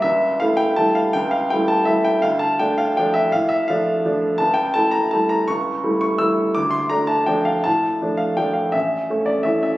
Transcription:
<<
  \new Staff \with { instrumentName = "Grand piano" } { \time 3/4 \key d \minor \tempo 4 = 165 e''4 f''8 g''8 a''8 f''8 | g''8 f''8 g''8 a''8 e''8 g''8 | f''8 a''8 g''8 f''8 g''8 e''8 | f''8 e''8 f''4 r4 |
a''8 g''8 a''8 bes''8 a''8 bes''8 | cis'''4. cis'''8 e'''4 | d'''8 c'''8 bes''8 a''8 g''8 f''8 | a''4. f''8 g''8 f''8 |
e''4. d''8 e''8 e''8 | }
  \new Staff \with { instrumentName = "Grand piano" } { \time 3/4 \key d \minor cis,4 <a e'>4 <g a e'>4 | cis,4 <g a e'>4 <g a e'>4 | d,4 <a d'>4 <f a d'>4 | a,4 <f a d'>4 <f a d'>4 |
cis,4 <a e'>4 <g a e'>4 | cis,4 <g a e'>4 <g a e'>4 | d,4 <a d'>4 <f a d'>4 | a,4 <f a d'>4 <f a d'>4 |
a,,4 <a cis'>4 <e a cis'>4 | }
>>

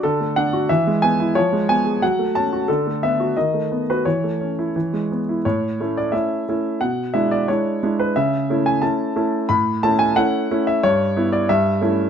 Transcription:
<<
  \new Staff \with { instrumentName = "Grand piano" } { \time 2/4 \key a \major \tempo 4 = 90 a'8 fis''8 e''8 gis''8 | cis''8 gis''8 fis''8 a''8 | a'8 e''8 dis''8. b'16 | cis''4. r8 |
cis''8. d''16 e''4 | fis''8 e''16 d''16 cis''8. b'16 | e''8. gis''16 a''4 | b''8 a''16 gis''16 fis''8. e''16 |
\key e \dorian cis''8. d''16 e''4 | }
  \new Staff \with { instrumentName = "Grand piano" } { \time 2/4 \key a \major d16 a16 d'16 fis'16 e16 gis16 b16 e'16 | eis16 gis16 b16 gis'16 fis16 a16 cis'16 fis'16 | d16 a16 b16 fis'16 dis16 a16 b16 fis'16 | e16 a16 cis'16 e'16 e16 gis16 b16 e'16 |
a,8 <a cis' e'>8 <a cis' e'>8 <a cis' e'>8 | b,8 <gis d' e'>8 <gis d' e'>8 <gis d' e'>8 | cis8 <a cis' e'>8 <a cis' e'>8 <a cis' e'>8 | a,8 <a cis' e'>8 <a cis' e'>8 <a cis' e'>8 |
\key e \dorian g,8 <b e'>8 g,8 <a cis' e'>8 | }
>>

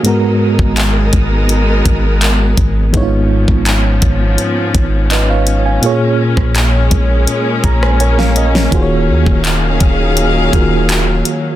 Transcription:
<<
  \new Staff \with { instrumentName = "FM electric piano" } { \time 4/4 \key gis \dorian \tempo 4 = 83 << { r1 | r2. <b' dis''>16 <cis'' eis''>8 <eis'' gis''>16~ | <eis'' gis''>16 r2 r16 ais''16 gis''16 <ais' cis'' gis''>16 <cis'' eis''>16 dis''16 <ais' cis''>16~ | <ais' cis''>16 r2. r8. | } \\ { <gis, gis b fis' ais'>1 | <gis, gis b dis' e' eis' cis''>1 | <ais, ais eis' gis' cis''>1 | <dis ais eis' fis' gis' bis' cis''>2~ <dis ais eis' fis' gis' bis' cis''>8 <dis ais eis' fis' gis' ais'>4. | } >> }
  \new Staff \with { instrumentName = "String section" } { \time 4/4 \key gis \dorian << { <gis b dis'>1 | cis'1~ | cis'1 | <dis gis'>1 | } \\ { <fis ais'>1 | <eis b>1 | <gis ais>1 | <fis eis''>1 | } >> }
  \new Staff \with { instrumentName = "808-style bass" } { \clef bass \time 4/4 \key gis \dorian r8. gis,,8. gis,,4 gis,,4 gis,,8 | gis,,8. gis,,8. gis,,8 r8 gis,,4. | r8. ais,,8. ais,,8 r8 ais,,4. | dis,,8 dis,16 dis,,8. dis,,4 dis,,4 r8 | }
  \new DrumStaff \with { instrumentName = "Drums" } \drummode { \time 4/4 hh8. bd16 <hc hh>8 <hh bd>8 hh8 <hh bd>8 <hc hh>8 <hh bd>8 | <hh bd>8. bd16 <hc hh>8 <hh bd>8 hh8 <hh bd>8 <hc hh>8 hh8 | hh8. <bd ss>16 <hc hh>8 <hh bd>8 hh8 <hh bd>16 ss16 hh16 sn16 hh16 sn16 | <hh bd>8. bd16 <hc hh>8 <hh bd>8 hh8 <hh bd>8 <hc hh>8 hh8 | }
>>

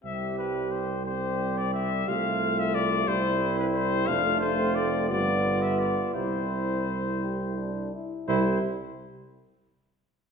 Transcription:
<<
  \new Staff \with { instrumentName = "Trumpet" } { \time 6/8 \key c \major \tempo 4. = 58 e''8 b'8 c''8 c''8. d''16 e''8 | f''8. e''16 d''8 c''8. b'16 c''8 | f''8 c''8 d''8 d''8. e''16 d''8 | c''2~ c''8 r8 |
c''8 r2 r8 | }
  \new Staff \with { instrumentName = "Flugelhorn" } { \time 6/8 \key c \major g'4. g'4. | f'4. e'4. | f'4. f'4. | e'2~ e'8 r8 |
e'8 r2 r8 | }
  \new Staff \with { instrumentName = "French horn" } { \time 6/8 \key c \major c'4. c'4. | c'4. c'4. | d'8. c'8. b4. | c'4. g'8 d'8 e'8 |
c'8 r2 r8 | }
  \new Staff \with { instrumentName = "Trombone" } { \clef bass \time 6/8 \key c \major g4. g4. | a4. g4. | a4. g4. | g2~ g8 r8 |
g8 r2 r8 | }
  \new Staff \with { instrumentName = "Tuba" } { \clef bass \time 6/8 \key c \major c,2. | c,4. c,4. | f,,4. g,,4. | c,2~ c,8 r8 |
c,8 r2 r8 | }
>>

